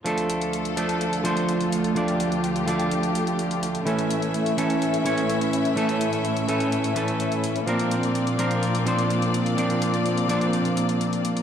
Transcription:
<<
  \new Staff \with { instrumentName = "String section" } { \time 4/4 \key d \minor \tempo 4 = 126 << { a'1 | g'1 | e''1~ | e''1 |
d''1~ | d''1 | } \\ { <d, d a f'>1~ | <d, d a f'>1 | <a, cis' e'>1~ | <a, cis' e'>1 |
<bes, bes c' f'>1~ | <bes, bes c' f'>1 | } >> }
  \new Staff \with { instrumentName = "Clean electric guitar" } { \time 4/4 \key d \minor <f a d' a'>4. <f a d' a'>4 <f a d' c''>4. | <f a d' d''>4. <f a d' d''>2~ <f a d' d''>8 | <e a cis' a'>4. <e a cis' a'>4 <e a cis' cis''>4. | <e a cis' a'>4. <e a cis' a'>4 <e a cis' a'>4. |
<f c' d' bes'>4. <f c' d' bes'>4 <f c' d' c''>4. | <f c' d' d''>4. <f c' d' d''>2~ <f c' d' d''>8 | }
  \new DrumStaff \with { instrumentName = "Drums" } \drummode { \time 4/4 hh16 hh16 hh16 hh16 hh16 hh16 hh16 hh16 hh16 hh16 hh16 hh16 hh16 hh16 hh16 hh16 | hh16 hh16 hh16 hh16 hh16 hh16 hh16 hh16 hh16 hh16 hh16 hh16 hh16 hh16 hh16 hh16 | hh16 hh16 hh16 hh16 hh16 hh16 hh16 hh16 hh16 hh16 hh16 hh16 hh16 hh16 hh16 hh16 | hh16 hh16 hh16 hh16 hh16 hh16 hh16 hh16 hh16 hh16 hh16 hh16 hh16 hh16 hh16 hh16 |
hh16 hh16 hh16 hh16 hh16 hh16 hh16 hh16 hh16 hh16 hh16 hh16 hh16 hh16 hh16 hh16 | hh16 hh16 hh16 hh16 hh16 hh16 hh16 hh16 hh16 hh16 hh16 hh16 hh16 hh16 hh16 hh16 | }
>>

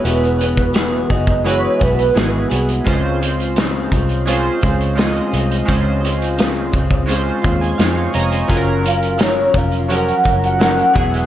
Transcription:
<<
  \new Staff \with { instrumentName = "Soft synth lead" } { \time 4/4 \key des \major \tempo 4 = 85 b'8 b'4 ees''8 des''8 b'4 r8 | r1 | r1 | r8 f''8 des''8 f''8 ges''8. ges''4~ ges''16 | }
  \new Staff \with { instrumentName = "Synth keys" } { \time 4/4 \key des \major << { r1 | r1 | r2 r8 c'''16 aes''16 f''16 <f'' des'''>16 <des'' ees'' bes''>16 <c'' aes''>16~ | <c'' aes''>16 r2. r8. | } \\ { <gis e' fis' b'>4 r4 <gis e' fis' b'>8 r8 <gis e' fis' gis'>8 r8 | <aes des' f' c''>4~ <aes des' f' c''>16 r8. <aes des' f' c''>8 r8 <aes des' f' ees''>8 r8 | <aes des' f' c''>4~ <aes des' f' c''>16 r8. <aes des' f' c''>8 r4. | <ges des' f' aes' bes'>4~ <ges des' f' aes' bes'>16 r8. <f ges des' bes'>8 r8 <f ges des' bes'>8 <fis b e' gis'>8 | } >> }
  \new Staff \with { instrumentName = "Clean electric guitar" } { \time 4/4 \key des \major <e b fis' gis'>8 <b fis' gis'>8 <e b fis' gis'>8 <b fis' gis'>8 <e b fis' gis'>8 <b fis' gis'>8 <e b fis' gis'>8 <b fis' gis'>8 | <des aes c' f'>8 <aes c' f'>8 <des aes c' f'>8 <aes c' f'>8 <aes c' f'>8 <aes c' f'>8 <des aes c' f'>8 <aes c' f'>8 | <des aes c' f'>8 <aes c' f'>8 <des aes c' f'>8 <aes c' f'>8 <des aes c' f'>8 <aes c' f'>8 <des aes c' f'>8 <aes c' f'>8 | <ges des' f' bes'>8 <des' f' bes'>8 <ges des' f' bes'>8 <des' f' bes'>8 <ges des' bes'>8 <des' f' bes'>8 <ges des' bes'>8 <b fis' gis'>8 | }
  \new Staff \with { instrumentName = "Fingered electric bass" } { \clef bass \time 4/4 \key des \major e,,4. fis,,4 b,,8 gis,,8 c,8 | des,4. c,4 des,4 c,8 | des,4. des,4 ees,8 f,8 f,,8 | ges,,4. f,,4 ges,,4 e,,8 | }
  \new DrumStaff \with { instrumentName = "Drums" } \drummode { \time 4/4 hh16 hh16 hh16 <hh bd>16 <hh sn>8 <hh bd>16 <hh bd>16 hh8 <hh bd>16 hh16 <hh sn>8 hh16 hh16 | <hh bd>8 hh16 hh16 <hh sn>8 <hh bd>16 hh16 hh8 <hh bd>16 hh16 <hh sn>16 hh16 hh16 hh16 | <hh bd>8 hh16 hh16 <hh sn>8 <hh bd>16 <hh bd>16 hh8 <hh bd>16 hh16 <hh sn>8 hh16 hh16 | <hh bd>8 hh16 hh16 <hh sn>8 <hh bd>16 hh16 hh16 hh16 <hh bd>16 hh16 <hh sn>16 hh16 <hh bd>16 hh16 | }
>>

